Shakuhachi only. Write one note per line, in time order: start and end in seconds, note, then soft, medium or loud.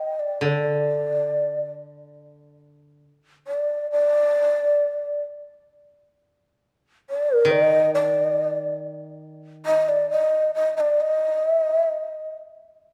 0.00 0.21 D#5 medium
0.19 0.42 D5 medium
0.43 1.70 D5 medium
3.48 3.87 D5 medium
3.92 5.21 D5 loud
7.10 7.36 D5 medium
7.36 7.53 A#4 medium
7.51 7.93 D#5 loud
7.95 8.76 D5 medium
9.66 9.90 D#5 loud
9.89 10.10 D5 medium
10.11 10.51 D#5 loud
10.55 10.75 D#5 medium
10.77 11.02 D5 medium
10.77 10.81 D#5 medium
11.01 11.49 D#5 medium
11.49 11.62 E5 medium
11.62 11.76 D#5 medium
11.76 11.89 E5 medium
11.89 12.36 D#5 medium